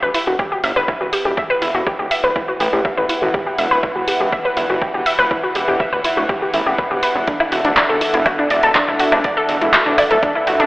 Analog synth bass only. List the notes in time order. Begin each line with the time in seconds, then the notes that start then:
0.03 E1
0.27 E1
0.64 G1
0.76 G1
1.01 E1
1.25 E1
1.62 E1
1.75 E1
1.99 D1
2.24 D1
2.60 A1
2.73 A1
2.97 A1
3.22 A1
3.59 E1
3.71 D1
3.96 E1
4.20 E1
4.57 G1
4.70 G1
4.94 E1
5.19 E1
5.55 E1
5.68 E1
5.93 D1
6.17 D1
6.54 A1
6.66 A1
6.91 E1
7.16 E1
7.52 E1
7.65 D1
7.89 E1
8.14 E1
8.51 E1
8.63 E1
8.88 E1
9.12 E1
9.49 E1
9.62 E1
9.86 D1
10.11 D1
10.47 A1
10.60 A1